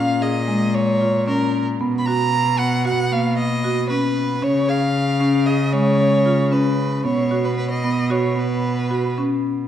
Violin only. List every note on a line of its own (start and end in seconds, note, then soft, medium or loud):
0.00 0.24 F5 medium
0.22 0.76 D#5 medium
0.74 1.27 C#5 medium
1.27 1.64 A#4 medium
1.99 2.07 B5 medium
2.06 2.60 A#5 medium
2.58 2.85 F#5 medium
2.86 3.14 F#5 medium
3.12 3.37 F5 medium
3.37 3.86 D#5 medium
3.89 4.45 B4 medium
4.43 4.70 C#5 medium
4.68 5.47 F5 medium
5.46 5.74 D#5 medium
5.73 6.54 C#5 medium
6.52 7.04 B4 medium
7.05 7.46 C#5 medium
7.45 7.56 B4 medium
7.57 7.69 B4 medium
7.70 8.13 D#5 medium
8.11 8.40 C#5 medium
8.38 9.18 B4 medium